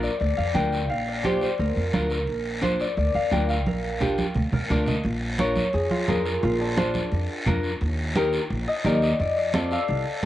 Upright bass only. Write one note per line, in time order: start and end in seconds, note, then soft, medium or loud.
0.21 0.34 D2 medium
0.38 0.52 F2 medium
0.55 0.90 D2 medium
0.90 1.45 A#1 medium
1.59 1.73 D2 medium
1.77 1.90 F2 medium
1.94 2.28 D2 medium
2.28 2.83 A#1 medium
2.97 3.11 D2 medium
3.15 3.28 F2 medium
3.32 3.66 D2 medium
3.66 4.21 A#1 medium
4.35 4.49 D2 medium
4.52 4.66 F2 medium
4.70 4.98 D2 medium
5.05 5.60 A#1 medium
5.74 5.88 F2 medium
6.08 6.36 F2 medium
6.43 6.98 A#1 loud
7.12 7.26 F2 medium
7.47 7.74 F2 medium
7.81 8.37 D#2 medium
8.50 8.64 A#1 medium
8.84 9.12 D#2 loud
9.20 9.75 F2 medium
9.89 10.03 C2 medium